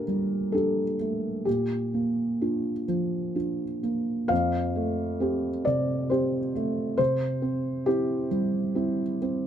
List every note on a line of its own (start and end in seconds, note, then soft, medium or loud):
0.00 1.42 A#2 soft
0.00 1.00 A3 soft
0.00 0.54 D4 soft
0.00 0.54 G4 soft
0.00 0.52 A#4 medium
0.00 1.48 D5 medium
0.07 0.81 G3 soft
0.52 0.96 D4 soft
0.52 0.96 G4 soft
0.52 1.45 A4 medium
1.00 1.46 A3 soft
1.45 4.27 A#2 soft
1.45 3.35 G4 medium
1.94 2.70 A#3 soft
2.41 2.85 D4 soft
2.41 2.85 F4 soft
2.88 3.64 F3 soft
3.35 3.79 D4 soft
3.35 3.79 F4 soft
3.83 4.30 A#3 soft
4.28 6.94 F2 medium
4.28 5.65 F5 medium
4.75 5.48 A3 soft
5.20 5.62 C4 soft
5.20 5.62 G4 soft
5.65 6.38 C3 soft
5.65 6.10 D5 medium
6.10 6.51 C4 soft
6.10 6.51 G4 soft
6.10 6.96 C5 medium
6.55 6.99 A3 soft
6.97 9.47 C3 medium
6.97 7.86 C5 medium
7.42 7.86 C4 soft
7.86 8.27 C4 soft
7.86 8.27 E4 soft
7.86 9.47 G4 medium
8.31 9.02 G3 soft
8.75 9.17 C4 soft
8.75 9.17 E4 soft
9.22 9.47 C4 soft